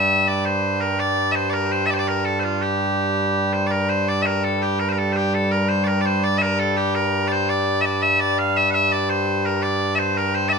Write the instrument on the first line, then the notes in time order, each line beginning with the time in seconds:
bagpipes
Already playing: G2 G3 E5
0.28 D5
0.45 C5
0.81 A#4
1.00 D5
1.32 C5 E5
1.50 A#4 D5
1.72 C5
1.86 E5
1.90 C5 D5
1.99 D5
2.08 A#4
2.25 A4
2.40 C5
2.44 F4
2.62 G4
3.53 C5
3.67 D5
3.71 A#4
3.89 C5
4.08 D5
4.22 A#4 E5
4.44 A4
4.62 G4
4.79 A#4
4.89 A#4 C5
4.98 A4
5.13 G4 C5
5.34 A4
5.51 A#4
5.69 C5
5.84 A#4 D5
6.01 D5
6.06 C5
6.24 D5
6.38 A#4 E5
6.59 A4
6.77 G4
6.95 A#4
7.28 D5
7.32 C5
7.49 D5
7.81 D5 E5
8.02 E5
8.20 D5
8.38 F5
8.56 E5
8.70 E5 F#5
8.92 D5
9.09 C5
9.46 A#4
9.63 D5
9.95 C5 E5
10.17 A#4
10.35 C5
10.49 D5 E5